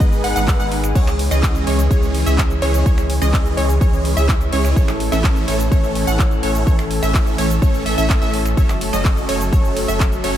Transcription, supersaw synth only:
0.00 0.22 G#3 medium
0.00 0.22 B3 medium
0.00 0.22 D#4 medium
0.00 0.22 B4 medium
0.00 0.22 D#5 medium
0.24 0.33 G#3 medium
0.24 0.33 B3 medium
0.24 0.33 D#4 medium
0.24 0.33 B4 medium
0.24 0.33 F#5 loud
0.36 0.57 G#3 loud
0.36 0.57 B3 medium
0.36 0.57 D#4 loud
0.36 0.57 B4 medium
0.36 0.57 F#5 loud
0.60 0.73 G#3 medium
0.60 0.73 B3 medium
0.60 0.73 D#4 medium
0.60 0.73 B4 medium
0.60 0.73 F#5 loud
0.96 1.08 E3 medium
0.96 1.08 G#3 medium
0.96 1.08 C#4 medium
0.96 1.08 G#4 medium
0.96 1.08 C#5 medium
1.31 1.64 E3 medium
1.31 1.64 G#3 medium
1.31 1.64 C#4 medium
1.31 1.64 G#4 medium
1.31 1.64 D#5 loud
1.67 1.80 E3 medium
1.67 1.80 G#3 medium
1.67 1.80 C#4 medium
1.67 1.80 G#4 medium
1.67 1.80 C#5 medium
1.91 2.24 E3 medium
1.91 2.24 G#3 medium
1.91 2.24 C#4 medium
1.91 2.24 G#4 medium
1.91 2.24 C#5 medium
2.26 2.39 E3 medium
2.26 2.39 G#3 medium
2.26 2.39 C#4 medium
2.26 2.39 G#4 medium
2.26 2.39 E5 loud
2.62 2.83 E3 medium
2.62 2.83 G#3 medium
2.62 2.83 C#4 medium
2.62 2.83 G#4 medium
2.62 2.83 C#5 loud
2.86 2.99 G#3 medium
2.86 2.99 C#4 medium
2.86 2.99 G#4 medium
2.86 2.99 C#5 medium
3.22 3.54 E3 medium
3.22 3.54 G#3 medium
3.22 3.55 C#4 medium
3.22 3.54 G#4 medium
3.22 3.54 D#5 loud
3.57 3.70 E3 medium
3.57 3.70 G#3 medium
3.57 3.70 C#4 medium
3.57 3.70 G#4 medium
3.57 3.70 C#5 medium
3.81 4.14 E3 medium
3.81 4.14 G#3 medium
3.81 4.14 C#4 medium
3.81 4.14 G#4 medium
3.81 4.14 C#5 medium
4.17 4.30 E3 medium
4.17 4.30 G#3 medium
4.17 4.30 C#4 medium
4.17 4.30 G#4 medium
4.17 4.30 E5 loud
4.53 4.74 E3 medium
4.53 4.74 G#3 medium
4.53 4.74 C#4 medium
4.53 4.74 G#4 medium
4.53 4.74 C#5 medium
4.76 4.89 E3 medium
4.76 4.89 A3 medium
4.76 4.89 C#4 medium
4.76 4.89 A4 medium
4.76 4.89 C#5 medium
5.12 5.45 E3 medium
5.12 5.45 A3 medium
5.12 5.45 C#4 medium
5.12 5.45 A4 medium
5.12 5.45 E5 loud
5.48 5.61 E3 medium
5.48 5.61 A3 medium
5.48 5.61 C#4 medium
5.48 5.61 A4 medium
5.48 5.61 C#5 medium
5.72 6.05 E3 medium
5.72 6.05 A3 medium
5.72 6.05 C#4 medium
5.72 6.05 A4 medium
5.72 6.05 C#5 medium
6.07 6.20 E3 medium
6.07 6.20 A3 medium
6.07 6.20 C#4 medium
6.07 6.20 A4 medium
6.07 6.20 F#5 loud
6.43 6.64 E3 medium
6.43 6.64 A3 medium
6.43 6.64 C#4 medium
6.43 6.64 A4 medium
6.43 6.64 C#5 loud
6.67 6.80 E3 medium
6.67 6.80 A3 medium
6.67 6.80 C#4 medium
6.67 6.80 A4 medium
7.03 7.35 E3 medium
7.03 7.35 A3 medium
7.03 7.36 C#4 medium
7.03 7.35 A4 medium
7.03 7.36 E5 loud
7.38 7.51 E3 medium
7.38 7.51 A3 medium
7.38 7.51 C#4 medium
7.38 7.51 A4 medium
7.38 7.51 C#5 medium
7.62 7.84 E3 medium
7.62 7.84 A3 medium
7.62 7.84 C#4 medium
7.62 7.84 A4 medium
7.62 7.84 C#5 medium
7.86 7.95 E3 medium
7.86 7.95 A3 medium
7.86 7.95 C#4 medium
7.86 7.95 A4 medium
7.86 7.95 E5 loud
7.98 8.19 E3 loud
7.98 8.19 A3 medium
7.98 8.19 C#4 medium
7.98 8.19 A4 medium
7.98 8.19 E5 loud
8.22 8.35 E3 medium
8.22 8.35 A3 medium
8.22 8.35 C#4 medium
8.22 8.35 A4 medium
8.22 8.35 E5 loud
8.57 8.70 F#3 medium
8.57 8.70 A3 medium
8.57 8.70 C#4 medium
8.57 8.70 A4 medium
8.57 8.70 C#5 medium
8.93 9.26 F#3 medium
8.93 9.26 A3 medium
8.93 9.26 C#4 medium
8.93 9.26 A4 medium
8.93 9.26 D#5 loud
9.29 9.42 F#3 medium
9.29 9.42 A3 medium
9.29 9.42 C#4 medium
9.29 9.42 A4 medium
9.29 9.42 C#5 medium
9.53 9.86 F#3 medium
9.53 9.86 A3 medium
9.53 9.86 C#4 medium
9.53 9.86 A4 medium
9.53 9.86 C#5 medium
9.88 10.01 F#3 medium
9.88 10.01 A3 medium
9.88 10.01 C#4 medium
9.88 10.01 A4 medium
9.88 10.01 E5 loud
10.24 10.37 F#3 medium
10.24 10.37 A3 medium
10.24 10.37 C#4 medium
10.24 10.37 A4 medium
10.24 10.37 C#5 loud

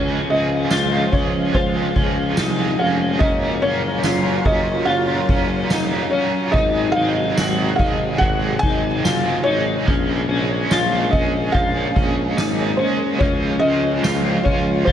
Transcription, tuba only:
0.00 0.24 C#2 loud
0.29 0.66 C#2 loud
0.71 1.08 C#2 loud
1.13 1.49 C#2 loud
1.54 1.91 C#2 loud
1.96 2.32 C#2 medium
2.38 2.74 C2 medium
2.79 3.16 F1 medium
3.20 3.57 F#1 medium
3.62 3.99 F#1 medium
4.03 4.40 F#1 loud
4.45 4.82 F#1 medium
4.86 5.23 F#1 loud
5.29 5.66 F#1 medium
5.70 6.07 F1 medium
6.54 6.90 G#1 loud
6.95 7.32 G#1 loud
7.37 7.74 G#1 loud
7.79 8.16 G#1 loud
8.21 8.58 G#1 loud
8.63 8.99 G#1 loud
9.04 9.40 F#1 medium
9.46 9.82 G#1 medium
9.88 10.24 A#1 loud
10.29 10.65 A#1 loud
10.70 11.07 A#1 loud
11.13 11.49 A#1 loud
11.54 11.91 A#1 loud
11.96 12.32 A#1 loud
12.37 12.79 G#1 loud
13.21 13.57 C#2 medium
13.62 13.99 C#2 medium
14.04 14.40 C#2 loud
14.46 14.82 C#2 loud
14.87 14.92 C#2 loud

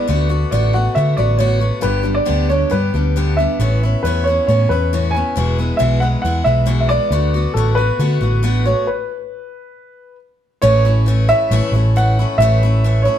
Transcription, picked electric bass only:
0.09 0.44 D2 medium
0.52 0.87 A1 medium
0.96 1.14 D3 medium
1.18 1.70 A1 medium
1.84 2.19 G1 medium
2.29 2.63 D2 medium
2.73 2.90 G2 medium
2.94 3.46 D2 medium
3.59 3.94 A1 medium
4.04 4.38 E2 medium
4.48 4.65 A2 medium
4.70 5.22 E2 medium
5.37 5.71 E1 medium
5.81 6.15 B1 medium
6.25 6.42 E2 medium
6.46 6.98 B1 medium
7.11 7.46 D2 medium
7.55 7.90 A1 medium
7.99 8.17 D3 medium
8.21 8.73 A1 medium
10.63 11.32 A1 loud
11.51 11.60 A1 medium
11.72 12.24 A1 medium
12.38 13.07 A1 loud

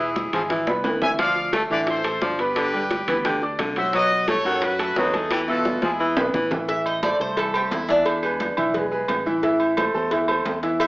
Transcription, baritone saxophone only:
0.33 0.42 F3 medium
0.50 0.68 E3 medium
0.84 1.02 E3 medium
1.19 1.37 F3 medium
1.53 1.62 A3 medium
1.71 1.99 D3 medium
2.22 2.40 F3 medium
2.57 2.85 D3 medium
3.09 3.18 E3 medium
3.25 3.43 D3 medium
3.60 3.78 D3 medium
3.94 4.12 F#3 medium
4.29 4.38 A3 medium
4.46 4.74 D#3 medium
4.98 5.16 F#3 medium
5.31 5.59 E3 medium
5.82 5.91 F3 medium
6.00 6.18 E3 medium
6.34 6.52 E3 medium

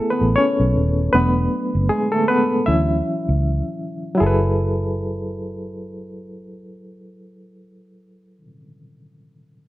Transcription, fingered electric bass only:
0.21 0.35 A1 medium
0.60 0.73 B1 medium
0.76 1.08 D#1 medium
1.14 1.46 E1 medium
1.75 1.88 F#1 medium
2.68 3.00 D2 medium
3.29 3.61 C#2 medium
4.21 8.44 F#1 medium

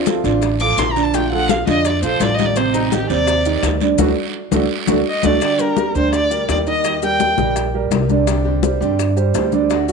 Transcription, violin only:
0.60 0.80 D6 loud
0.78 0.93 C6 loud
0.91 1.04 A#5 medium
1.03 1.17 A5 medium
1.15 1.31 G5 medium
1.32 1.51 F#5 loud
1.50 1.67 F5 medium
1.68 1.88 D#5 loud
1.87 2.04 D5 medium
2.04 2.24 C5 loud
2.23 2.36 D5 medium
2.35 2.47 D#5 loud
2.46 2.58 D5 medium
2.56 2.76 C5 medium
2.74 2.94 D#4 medium
2.93 3.09 G4 medium
3.10 3.60 D5 loud
5.09 5.27 D#5 medium
5.26 5.62 D5 medium
5.61 5.96 A#4 medium
5.97 6.13 C5 medium
6.15 6.47 D5 medium
6.50 6.58 D5 medium
6.68 7.01 D#5 loud
7.04 7.53 G5 loud

